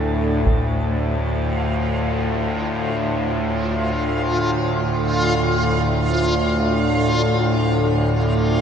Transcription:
Already playing: D2 A2 A3 D4 A4 D5
0.45 D2 A2 F4 F5, taiko

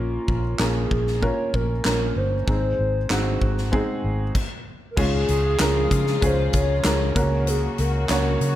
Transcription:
Already playing: A#1 A#3 C#4 F4 A#4
0.28 A#1, kick
0.59 A#1 A#3 C#4 F4 G#4 A#4, snare, clap
0.91 A#1, kick
1.07 snare
1.21 A#3 C#4 F4 A#4 C#5, kick
1.54 A#1 A#4, kick
1.84 A#1 A#3 C#4 F4 A#4, snare, clap
2.16 G1 C5
2.47 G#1 G#3 C4 D#4 G#4, kick
2.79 G#1
3.09 G#1 G#3 C4 D#4 F#4, snare, clap
3.42 G#1, kick
3.58 snare
3.72 G#3 C4 D#4 G#4, kick
4.04 G#1
4.35 kick, crash
4.91 A#4
4.97 C#2 G#2 C#3 F3 G#3 C#4 F4 G#4, kick, crash
5.28 C#2 G#4, closed hi-hat
5.59 C#2 G#3 C#4 F4 A#4, snare, clap, closed hi-hat
5.91 C#3, kick, clap, closed hi-hat
6.07 snare
6.21 C#2 G#3 C#4 F4 G#4 C5, kick, closed hi-hat
6.53 C#2 C#5, kick, closed hi-hat
6.84 C#2 G#3 C#4 F4 A#4, snare, clap, closed hi-hat
7.15 C#2 C#3 F#3 A#3 C#4 F#4 A#4, kick, closed hi-hat
7.47 G#4, closed hi-hat
7.78 C#2 A#4, closed hi-hat
8.09 C#2 A#3 C#4 F#4 C#5, snare, clap, closed hi-hat
8.41 C#3, closed hi-hat

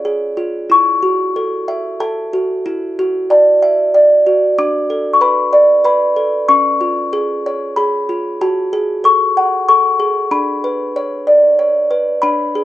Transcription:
Already playing: F4 C#5 F5
0.05 G#4
0.37 F4
0.70 E4 C#6
1.03 F#4
1.36 A4
1.68 E5
2.00 A4 A5
2.33 F#4
2.66 E4
2.99 F#4
3.30 D5 A5
3.62 E5
3.94 D5
4.27 F#4
4.58 D4 D6
4.90 A4
5.13 C#6
5.21 B4 B5
5.53 D5
5.84 B4 B5
6.16 A4
6.48 C#4 C#6
6.81 F4
7.13 G#4
7.46 C#5
7.76 G#4 B5
8.09 F4
8.41 F#4 A5
8.73 G#4
9.04 A4 C#6
9.37 F#5
9.69 A4 C#6
10.00 G#4
10.31 D4 B5
10.64 B4
10.96 C#5
11.27 D5
11.59 C#5
11.91 B4
12.22 D4 B5
12.55 G#4

